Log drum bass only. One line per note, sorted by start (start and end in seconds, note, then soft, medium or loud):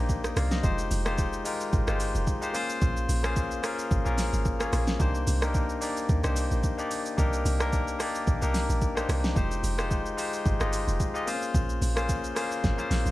0.00 0.34 A#1 medium
0.37 0.62 C2 loud
0.64 0.89 F1 loud
0.91 1.42 F1 loud
1.73 1.87 G#1 loud
1.88 2.13 G1 loud
2.15 2.26 F1 medium
2.82 3.07 A#1 loud
3.09 3.60 A#1 loud
3.91 4.05 G#1 loud
4.06 4.31 A#1 loud
4.33 4.70 G#1 medium
4.73 4.98 A#1 medium
5.00 5.25 C2 loud
5.27 5.78 C2 loud
6.09 6.23 D#2 loud
6.24 6.50 C2 loud
6.51 6.63 A#1 medium
7.18 7.44 C2 loud
7.45 7.96 C2 loud
8.28 8.41 A#1 medium
8.42 8.68 C2 medium
8.69 9.06 A#1 medium
9.09 9.34 C2 loud
9.36 9.62 F1 loud
9.63 10.14 F1 loud
10.46 10.60 G#1 loud
10.60 10.86 G1 medium
10.88 10.99 F1 loud
11.55 11.80 A#1 loud
11.82 12.33 A#1 loud
12.64 12.78 G#1 loud
12.91 13.05 A#1 loud
13.06 13.11 G#1 medium